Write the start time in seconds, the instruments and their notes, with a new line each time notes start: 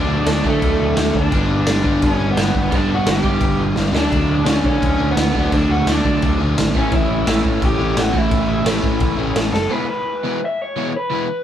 Already playing: overdriven electric guitar D3 F#3 A3 D4
0.09 picked electric bass D2
0.26 picked electric bass D2, overdriven electric guitar D4, snare, crash
0.43 picked electric bass D3, overdriven electric guitar D3 F#3 A3 D4, kick
0.62 picked electric bass D2, kick, crash
0.80 picked electric bass D2
0.96 picked electric bass D2, overdriven electric guitar D3 F#3 A3 D4, snare, crash
1.15 picked electric bass D2, overdriven electric guitar D4, kick
1.31 picked electric bass G1, overdriven electric guitar G2 D3 G3 B3 D4, kick, crash
1.49 picked electric bass G1
1.67 picked electric bass G1, snare, crash
1.84 picked electric bass G2, overdriven electric guitar G2 D3 G3 B3 D4, kick
2.02 picked electric bass G1, overdriven electric guitar C#4, kick, crash
2.20 picked electric bass G1
2.31 overdriven electric guitar B3
2.36 picked electric bass G1, overdriven electric guitar G2 D3 G3 B3 D4, snare, crash
2.54 picked electric bass G1, overdriven electric guitar B3, kick
2.71 picked electric bass G1, overdriven electric guitar G2 D3 G3 B3 D4, kick, crash
2.75 overdriven electric guitar D4
2.88 picked electric bass G1
2.95 overdriven electric guitar F#4
3.07 picked electric bass G1, snare, crash
3.11 overdriven electric guitar G4
3.23 picked electric bass G2, overdriven electric guitar G2 D3 G3 B3 D4, kick
3.41 picked electric bass G1, kick, crash
3.59 picked electric bass G1
3.75 picked electric bass G1, overdriven electric guitar G2 D3 G3 B3, snare
3.79 overdriven electric guitar D4
3.93 picked electric bass D2, overdriven electric guitar D3 F#3 A3 D4, snare
4.12 picked electric bass D2, kick, crash
4.29 picked electric bass D2
4.45 picked electric bass D2, overdriven electric guitar D3 F#3 A3 C#4 D4, snare, crash
4.64 picked electric bass D3, overdriven electric guitar C#4, kick
4.82 picked electric bass D2, kick, crash
4.98 picked electric bass D2, overdriven electric guitar D3 F#3 A3 D4
5.11 overdriven electric guitar B3
5.17 picked electric bass D2, snare, crash
5.33 picked electric bass D2, overdriven electric guitar D3 F#3 A3 D4, kick
5.39 overdriven electric guitar B3
5.52 picked electric bass D2, overdriven electric guitar D4, kick, crash
5.68 picked electric bass D2, overdriven electric guitar F#4
5.86 picked electric bass D2, overdriven electric guitar D3 F#3 A3 D4, snare, crash
5.90 overdriven electric guitar D4
6.05 picked electric bass D3, kick
6.22 picked electric bass D2, kick, crash
6.39 picked electric bass D2, overdriven electric guitar D3 F#3 A3 D4
6.58 picked electric bass G#1, snare, crash
6.73 picked electric bass A1, overdriven electric guitar A2 E3 A3 C#4 E4, kick
6.78 overdriven electric guitar C#4
6.91 picked electric bass A1, overdriven electric guitar E4, kick, crash
7.10 picked electric bass A1
7.25 picked electric bass A1, overdriven electric guitar A2 E3 A3 C#4 E4, snare, crash
7.44 picked electric bass A2, kick
7.62 picked electric bass A1, kick, crash
7.66 overdriven electric guitar G4
7.78 picked electric bass A1, overdriven electric guitar A2 E3 A3 C#4 E4
7.97 picked electric bass A1, overdriven electric guitar F#4, snare, crash
8.13 picked electric bass A1, overdriven electric guitar A2 E3 A3 C#4 E4, kick
8.18 overdriven electric guitar E4
8.31 picked electric bass A1, kick, crash
8.48 picked electric bass A1
8.65 picked electric bass A1, overdriven electric guitar A2 E3 A3 C#4 E4, snare, crash
8.84 picked electric bass A2, kick
9.00 picked electric bass A1, kick, crash
9.17 picked electric bass A1, overdriven electric guitar A2 E3 A3 C#4 E4
9.36 picked electric bass A1, snare, crash
9.53 picked electric bass F#1, overdriven electric guitar A4, snare
9.70 overdriven electric guitar E2 B2 E3 G#3 B3 E4 B4
9.89 overdriven electric guitar B4
10.24 overdriven electric guitar E2 B2 E3 G#3 B3 E4
10.45 overdriven electric guitar E5
10.62 overdriven electric guitar C#5
10.76 overdriven electric guitar E2 B2 E3 G#3 B3 E4
10.97 overdriven electric guitar B4
11.10 overdriven electric guitar E2 B2 E3 G#3 B3 E4